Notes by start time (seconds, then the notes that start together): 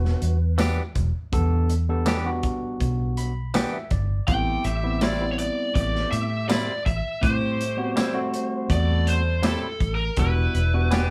Already playing: E1 G3 B3 D4 F#4 B4
0.05 snare
0.22 E2, closed hi-hat
0.58 E3 B3 D4 G4, snare, closed hi-hat, tambourine
0.95 E1, kick, closed hi-hat
1.32 E2 G3 B3 D4 A4, kick, closed hi-hat
1.69 closed hi-hat
1.89 G3 B3 D4 A4
2.06 E3 B3 D4 G4, snare, closed hi-hat, tambourine
2.25 G3 B3 D4 F#4
2.43 kick, closed hi-hat
2.80 B1, kick, closed hi-hat
3.17 B5, closed hi-hat
3.54 E3 B3 D4 G4 G5, snare, closed hi-hat, tambourine
3.73 E5
3.91 G1 D5, kick, closed hi-hat
4.28 A1 G3 A3 B3 C4 E4 G4 G5, kick, closed hi-hat
4.64 A1 E5, closed hi-hat
4.83 G3 B3 C4 E4
5.01 A2 G3 C4 E4 D5, snare, closed hi-hat, tambourine
5.21 G3 B3 C4 E4
5.32 C#5
5.39 D5, closed hi-hat
5.75 A1 A3 G4 D5, kick, closed hi-hat
5.95 snare
6.11 A2 E5, closed hi-hat
6.49 A2 G3 C4 E4 D5, snare, closed hi-hat, tambourine
6.86 A1 E5, kick, closed hi-hat
7.21 A2 G3 A3 C4 E4 G4 C5, kick, closed hi-hat
7.61 closed hi-hat
7.77 G3 B3 C4 F#4
7.96 A2 G3 C4 E4, snare, closed hi-hat, tambourine
8.14 G3 A3 C4 F#4
8.34 closed hi-hat
8.69 E2 G3 A3 D5, kick, closed hi-hat
9.07 C5, closed hi-hat
9.43 A2 G3 C4 E4, snare, closed hi-hat, tambourine
9.47 A4
9.80 A1, kick, closed hi-hat
9.95 A#4
10.17 E1 G3 B3 D4 E4 F#4 B4, kick, closed hi-hat
10.55 E1, closed hi-hat
10.74 G3 B3 D4 F#4
10.91 E3 B3 D4 G4, snare, closed hi-hat, tambourine